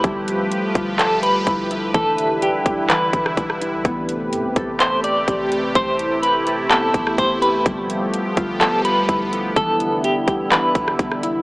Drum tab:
HH |x-x-x-x-x-x-x-x-|x-x-x-x-x-x-x-x-|x-x-x-x-x-x-x-x-|x-x-x-x-x-x-x-x-|
CP |--------x-------|--------x-------|--------x-------|--------x-------|
SD |----------------|-----------r-r--|----------------|-----------r----|
BD |o-----o-----o---|o-----o---o-o---|o-----o-----o---|o---------o-o---|

HH |x-x-x-x-x-x-x-x-|x-x-x-x-x-x-x-x-|
CP |--------x-------|--------x-------|
SD |----------------|-----------r-r--|
BD |o-----o-----o---|o-----o---o-o---|